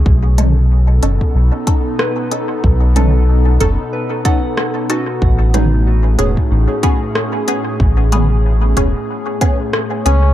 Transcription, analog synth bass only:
X:1
M:4/4
L:1/8
Q:"Swing 16ths" 1/4=93
K:Bmix
V:1 name="Analog synth bass" clef=bass
B,,,3 F,,, B,,, z3 | B,,,3 F,,, z4 | A,,,3 E,,, A,,, z3 | A,,,3 E,,, z3 C,, |]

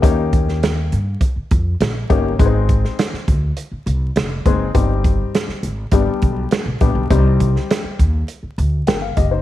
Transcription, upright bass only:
X:1
M:4/4
L:1/16
Q:1/4=102
K:Cm
V:1 name="Upright bass" clef=bass
E,,6 G,,2 z2 F,,2 B,,,2 G,,,2 | A,,,4 z2 D,,2 z2 C,,2 F,,,2 ^F,,,2 | G,,,4 z2 A,,,2 G,,, z =B,,,2 z B,,, _B,,, =B,,, | C,,4 z2 E,,2 z2 D,,2 G,,,2 ^F,,,2 |]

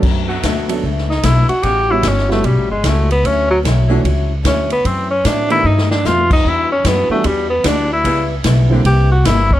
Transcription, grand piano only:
X:1
M:4/4
L:1/8
Q:"Swing" 1/4=150
K:Bm
V:1 name="Grand piano"
z3 [F,B,CDA] z4 | z [G,B,CEF] z [G,B,CEF] z4 | z3 [E,A,CDF] z4 | z3 [^D,A,B,=DG] z4 |
z3 [E,G,B,DF] z4 | z3 [D,G,^A,=CE] z4 |]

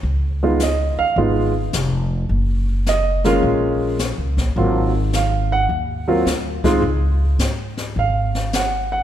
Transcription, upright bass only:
X:1
M:4/4
L:1/8
Q:"Swing" 1/4=106
K:Dblyd
V:1 name="Upright bass" clef=bass
D,,3 z A,,,2 F,,,2 | _G,,,4 B,,,2- (3B,,, D,, B,,, | A,,,4 E,,2 =D,,2 | D,,2 A,,2 A,,,4 |]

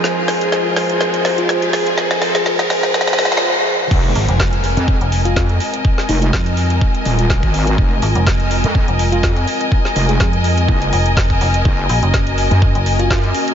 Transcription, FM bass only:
X:1
M:4/4
L:1/16
Q:"Swing 16ths" 1/4=124
K:Fphr
V:1 name="FM bass" clef=bass
z16 | z16 | z2 A,,, F,,,4 z2 F,,,3 z4 | z4 F,,4 z8 |
z2 A,,, F,,,4 z2 F,,,3 z4 | z4 F,,4 z2 F,,,2 F,,,2 F,,,2 | z2 B,,, G,,,4 z2 G,,,3 z4 |]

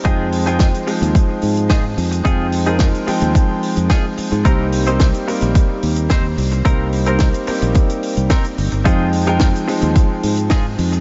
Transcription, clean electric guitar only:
X:1
M:4/4
L:1/16
Q:1/4=109
K:Fm
V:1 name="Clean electric guitar"
[EFA]2 z [EFA] z8 [EFA] z3 | [EFA]2 z [EFA] z8 [EFA] z3 | [CEB]2 z [CEc] z8 [CEc] z3 | [CEB]2 z [CEB] z8 [CEB] z3 |
[EFA]2 z [EFB] z8 [EFA] z3 |]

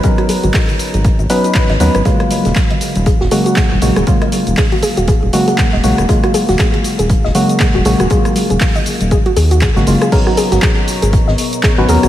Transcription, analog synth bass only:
X:1
M:4/4
L:1/16
Q:"Swing 16ths" 1/4=119
K:G#m
V:1 name="Analog synth bass" clef=bass
z3 G,,, z3 G,,, z G,,, z3 G,,, D,, G,,, | z3 D,,, z3 D,,, z D,,, z3 D,,, A,,, D,,, | z3 D,,, z3 D,,, z D,,, z3 D,,, A,,, D,,, | z3 D,,, z3 D,,, z D,,, z3 D,,, A,,, D,,, |
z3 D,,, z3 D,,, z2 D,,2 z G,,, F,,, z | z3 G,,, z3 G,,, z G,,, z3 G,,, D,, G,,, |]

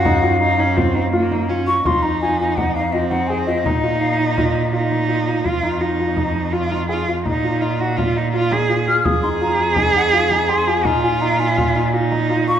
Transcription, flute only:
X:1
M:5/4
L:1/16
Q:1/4=167
K:Fphr
V:1 name="Flute"
f16 z2 d'2 | c'2 b2 a2 a2 g2 f2 e2 g2 a2 e2- | e4 f2 e8 z6 | z16 z4 |
z16 z2 f'3/2 f'/2 | e'2 c'2 b4 a2 g2 f2 a2 c'2 a2- | a2 a2 b2 a8 z4 d'2 |]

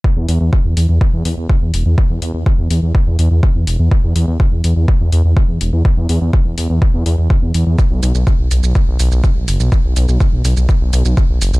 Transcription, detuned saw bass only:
X:1
M:4/4
L:1/16
Q:1/4=124
K:Bphr
V:1 name="Detuned saw bass" clef=bass
z E,, E,, E,, z E,, E,, E,, z E,, E,, E,, z E,, E,,, E,, | z E,, E,, E,, z E,, E,, E,, z E,, E,, E,, z E,, E,,, E,, | z E,, E,, E,, z E,, E,, E,, z E,, E,, E,, z E,, E,,, E,, | z E,, E,, E,, z E,, E,, E,, z E,, E,, E,, z E,, E,, E,, |
z B,,, B,,, B,,, z B,,, B,,, B,,, z B,,, B,,, B,,, z B,,, F,,, B,,, | z B,,, B,,, B,,, z B,,, B,,, B,,, z B,,, B,,, B,,, z B,,, F,,, B,,, |]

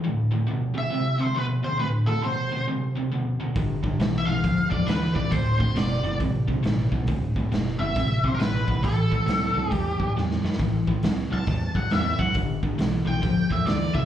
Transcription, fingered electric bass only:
X:1
M:4/4
L:1/8
Q:"Swing" 1/4=136
K:Dmix
V:1 name="Fingered electric bass" clef=bass
z8 | z8 | G,,,2 B,,, B,,, D,, E,, D,, ^C,, | D,,,2 F,,, F,,, A,,, B,,, A,,, B,,, |
D,,,2 F,,, F,,, A,,, B,,, A,,, ^G,,, | A,,,2 ^C,, C,, E,, F,, E,, F,, | A,,,2 ^C,, C,, E,, F,, E,, F,, | G,,,2 B,,, B,,, D,, E,, D,, C,, |]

